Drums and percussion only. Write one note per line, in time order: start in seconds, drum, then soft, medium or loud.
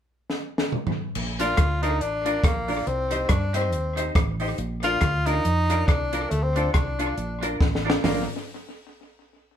0.30 snare soft
0.58 snare medium
0.72 mid tom medium
0.87 floor tom loud
1.15 crash medium
1.39 closed hi-hat medium
1.57 kick loud
1.57 cross-stick loud
1.57 closed hi-hat medium
1.83 closed hi-hat medium
2.01 closed hi-hat medium
2.26 closed hi-hat medium
2.44 kick loud
2.44 cross-stick loud
2.44 closed hi-hat medium
2.68 open hi-hat soft
2.87 closed hi-hat medium
3.11 closed hi-hat medium
3.29 kick loud
3.29 cross-stick loud
3.29 closed hi-hat medium
3.54 closed hi-hat medium
3.73 closed hi-hat medium
3.97 closed hi-hat medium
4.15 kick loud
4.15 cross-stick loud
4.15 closed hi-hat medium
4.40 open hi-hat soft
4.58 closed hi-hat medium
4.83 closed hi-hat medium
5.01 kick medium
5.01 cross-stick loud
5.01 closed hi-hat medium
5.26 closed hi-hat medium
5.45 closed hi-hat medium
5.70 closed hi-hat loud
5.88 kick loud
5.88 cross-stick loud
5.88 closed hi-hat medium
6.13 closed hi-hat medium
6.31 closed hi-hat medium
6.56 closed hi-hat medium
6.74 kick medium
6.74 cross-stick loud
6.74 closed hi-hat medium
6.99 closed hi-hat medium
7.18 closed hi-hat medium
7.43 closed hi-hat medium
7.61 kick loud
7.61 snare medium
7.75 snare medium
7.90 snare medium
8.04 snare loud
8.04 floor tom loud
8.04 open hi-hat medium